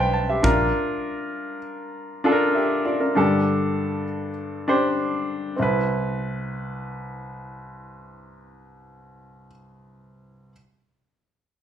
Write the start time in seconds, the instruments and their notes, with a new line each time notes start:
Already playing: picked electric bass B1, grand piano G2 C4 E4 C5 E5 F5 A5
0.00 grand piano B4 G5
0.13 grand piano A5
0.29 grand piano G4 E5
0.43 picked electric bass A#1, grand piano D4 F4 A#4 A#5, kick
2.24 grand piano D4 F4 A4
2.32 grand piano A#4
2.55 grand piano G4 E5
2.85 grand piano F4 D5
3.00 grand piano D4 A#4
3.15 grand piano G2 D3 D4 G4 A4
4.68 grand piano D4 G4 C5
5.56 grand piano C2 C4 E4
5.62 grand piano B4